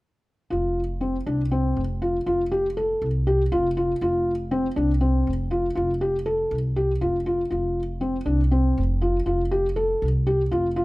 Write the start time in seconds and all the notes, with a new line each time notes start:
0.50 F1 F4
1.01 C4
1.26 C2 D4
1.51 C4
1.77 F1
2.02 F4
2.26 F1 F4
2.52 G4
2.77 A4
3.02 C2
3.27 G4
3.52 F1 F4
3.77 F4
4.01 F1 F4
4.51 C4
4.76 C2 D4
5.01 C4
5.27 F1
5.51 F4
5.75 F1 F4
6.01 G4
6.26 A4
6.51 C2
6.76 G4
7.01 F1 F4
7.26 F4
7.51 F1 F4
8.01 C4
8.26 C2 D4
8.51 C4
8.78 F1
9.01 F4
9.26 F1 F4
9.51 G4
9.76 A4
10.02 C2
10.27 G4
10.51 F1 F4
10.76 F4